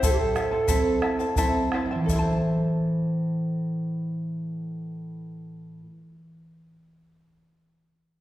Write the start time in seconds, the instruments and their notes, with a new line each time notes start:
0.03 nylon-string guitar A2, charango E4 A4 C5 E5 A5, pan flute A4, bombo rim, bombo low, shaker
0.12 pan flute G4
0.20 pan flute A4
0.36 charango E4 C5 E5 A5, bombo rim, shaker
0.51 charango E4 C5 A5
0.68 nylon-string guitar A3 C4 E4, charango E4 A4 C5 E5 A5, bombo rim, bombo low, shaker
1.02 charango E4 C5 E5 A5, bombo rim
1.19 charango E4 C5 A5, shaker
1.36 nylon-string guitar A3 C4 E4, charango E4 A4 C5 E5 A5, bombo rim, bombo low, shaker
1.55 bombo rim
1.72 charango E4 C5 E5 A5, bombo rim
1.86 nylon-string guitar A2
1.91 charango E4 C5 A5
1.95 nylon-string guitar E3
2.04 nylon-string guitar E4, charango A4
2.08 charango E5, bombo low, shaker
2.13 charango E4 C5, nylon-string guitar A4
2.19 charango A5
2.23 nylon-string guitar C5
2.33 nylon-string guitar A5